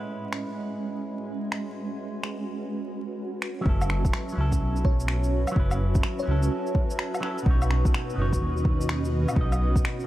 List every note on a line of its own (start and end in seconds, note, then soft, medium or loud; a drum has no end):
0.00 3.61 G#3 medium
0.00 3.66 G#3 medium
0.00 3.62 C#4 medium
0.00 10.07 C#4 medium
0.00 3.64 E4 medium
0.00 3.65 B4 medium
0.00 3.65 D#5 medium
0.33 10.07 F#4 medium
0.33 finger snap medium
0.43 10.07 B4 medium
1.52 finger snap medium
2.24 finger snap medium
3.42 finger snap medium
3.61 4.31 F#3 medium
3.61 4.34 C#4 medium
3.65 4.12 F#1 loud
3.65 4.35 E4 medium
3.65 4.37 A4 loud
3.65 kick loud
3.81 low woodblock medium
3.81 shaker soft
3.90 finger snap medium
4.05 kick loud
4.05 shaker medium
4.13 finger snap loud
4.29 5.50 F#3 medium
4.29 shaker soft
4.35 4.60 C#2 medium
4.35 5.53 C#4 medium
4.35 5.55 E4 medium
4.41 5.56 A4 loud
4.52 kick medium
4.52 shaker medium
4.62 5.46 B1 medium
4.76 shaker soft
4.85 5.53 C#5 medium
4.85 kick loud
4.93 7.47 E5 medium
5.00 shaker medium
5.08 finger snap loud
5.24 shaker soft
5.47 low woodblock medium
5.47 shaker medium
5.52 6.22 F#3 loud
5.52 6.25 C#4 medium
5.56 6.03 F#1 loud
5.56 6.26 E4 medium
5.56 6.27 B4 loud
5.56 kick loud
5.71 low woodblock medium
5.71 shaker soft
5.95 kick loud
5.95 shaker medium
6.03 finger snap loud
6.19 6.85 C#5 medium
6.19 shaker soft
6.23 7.18 F#3 medium
6.23 7.20 C#4 medium
6.28 6.50 C#2 medium
6.28 7.21 E4 medium
6.28 7.23 A4 loud
6.43 shaker medium
6.67 shaker soft
6.75 kick loud
6.90 shaker medium
6.99 finger snap loud
7.14 low woodblock medium
7.14 shaker soft
7.21 7.37 F#3 medium
7.21 7.38 C#4 medium
7.21 7.38 E4 medium
7.21 finger snap medium
7.25 7.39 A4 loud
7.38 shaker medium
7.42 7.93 B1 loud
7.42 8.13 B2 medium
7.42 8.15 B3 medium
7.42 kick loud
7.48 8.17 D#4 medium
7.48 8.18 C#5 loud
7.62 low woodblock soft
7.62 shaker soft
7.71 10.07 D#5 medium
7.71 finger snap medium
7.85 kick loud
7.85 shaker medium
7.94 finger snap loud
8.10 9.31 B2 medium
8.10 shaker soft
8.16 8.40 F#1 medium
8.16 9.34 B3 medium
8.16 9.36 D#4 medium
8.22 9.37 C#5 loud
8.33 kick medium
8.33 shaker medium
8.42 9.27 D#2 medium
8.57 shaker soft
8.65 kick loud
8.81 shaker medium
8.89 finger snap loud
9.05 shaker soft
9.28 low woodblock medium
9.28 shaker medium
9.32 10.03 B2 medium
9.32 10.05 B3 medium
9.32 kick loud
9.37 9.83 B1 loud
9.37 10.07 D#4 medium
9.41 10.07 D#5 loud
9.52 low woodblock soft
9.52 shaker soft
9.76 kick loud
9.76 shaker medium
9.85 finger snap loud
10.00 shaker soft